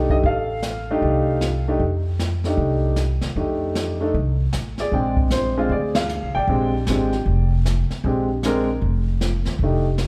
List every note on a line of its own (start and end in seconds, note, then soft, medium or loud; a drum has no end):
0.00 0.22 A4 medium
0.09 0.23 F#2 medium
0.09 0.23 A3 soft
0.09 0.24 D4 soft
0.09 0.24 D#4 soft
0.09 0.24 G4 medium
0.09 0.16 D#5 medium
0.09 kick soft
0.23 0.98 A1 medium
0.23 1.64 A4 medium
0.23 1.63 F5 medium
0.23 brush sweep soft
0.23 kick soft
0.63 snare soft
0.63 hi-hat pedal medium
0.91 1.40 A3 medium
0.91 1.40 D4 medium
0.91 1.40 D#4 medium
0.91 1.40 G4 medium
1.02 1.77 C2 medium
1.02 brush sweep soft
1.02 kick soft
1.41 snare medium
1.41 hi-hat pedal soft
1.68 1.80 A3 medium
1.68 1.80 D4 medium
1.68 1.81 D#4 medium
1.68 1.80 G4 medium
1.79 2.54 F2 medium
1.79 brush sweep soft
1.79 kick soft
2.19 snare medium
2.19 hi-hat pedal soft
2.44 2.95 A3 soft
2.44 2.96 D4 soft
2.44 2.96 D#4 soft
2.44 2.96 G4 medium
2.44 snare soft
2.57 3.18 C2 medium
2.57 brush sweep soft
2.57 kick soft
2.96 snare soft
2.96 hi-hat pedal soft
3.21 3.35 D#2 soft
3.21 snare soft
3.35 4.11 F2 medium
3.35 3.96 A3 soft
3.35 3.96 D4 soft
3.35 3.96 D#4 soft
3.35 3.97 G4 soft
3.35 brush sweep soft
3.35 kick soft
3.75 snare medium
3.75 hi-hat pedal soft
4.00 4.13 A3 medium
4.00 4.13 D4 soft
4.00 4.14 D#4 soft
4.00 4.14 A4 medium
4.14 4.51 C2 medium
4.14 brush sweep soft
4.14 kick soft
4.53 4.90 A1 medium
4.53 snare medium
4.53 hi-hat pedal medium
4.78 5.54 G#4 medium
4.78 5.16 D5 medium
4.78 snare soft
4.92 5.66 A#1 medium
4.92 5.52 G#3 soft
4.92 5.52 C4 soft
4.92 5.52 D4 soft
4.92 5.52 G5 medium
4.92 brush sweep soft
4.92 kick soft
5.17 kick medium
5.30 5.72 C5 medium
5.30 snare soft
5.30 hi-hat pedal medium
5.57 5.70 G#3 medium
5.57 5.70 C4 medium
5.57 5.70 D4 soft
5.57 5.70 F4 medium
5.69 6.18 D2 medium
5.69 5.97 D5 medium
5.69 brush sweep soft
5.69 kick soft
5.73 6.46 G#4 soft
5.95 6.32 F5 medium
5.95 snare medium
5.95 ride medium
6.09 hi-hat pedal soft
6.23 6.35 C2 soft
6.35 6.47 A1 medium
6.35 7.49 D5 medium
6.35 7.48 G5 medium
6.47 6.84 A#1 medium
6.47 6.71 G#3 soft
6.47 6.72 C4 soft
6.47 6.72 D4 soft
6.47 6.72 G4 soft
6.47 brush sweep soft
6.47 kick soft
6.87 7.24 G#1 medium
6.87 7.11 G#3 soft
6.87 7.11 C4 soft
6.87 7.11 D4 soft
6.87 7.12 G4 medium
6.87 snare medium
6.87 hi-hat pedal medium
7.12 snare soft
7.26 7.86 F1 medium
7.26 brush sweep soft
7.26 kick soft
7.66 snare soft
7.66 hi-hat pedal medium
7.90 muted upright bass stroke soft
7.90 snare soft
8.04 8.78 A#1 medium
8.04 8.27 G#3 soft
8.04 8.28 C4 soft
8.04 8.28 D4 soft
8.04 8.28 G4 medium
8.04 brush sweep soft
8.04 kick soft
8.43 8.67 G#3 medium
8.43 8.67 C4 medium
8.43 8.67 D4 medium
8.43 8.67 A#4 medium
8.43 snare soft
8.43 hi-hat pedal medium
8.81 9.42 F1 medium
8.81 brush sweep soft
8.81 kick soft
9.21 snare soft
9.21 hi-hat pedal medium
9.45 9.58 D#2 medium
9.45 snare soft
9.59 10.07 F1 medium
9.59 brush sweep soft
9.59 kick soft
9.63 9.84 A3 soft
9.63 9.84 D4 soft
9.63 9.84 D#4 soft
9.63 9.84 G4 medium
9.98 snare medium
9.98 hi-hat pedal medium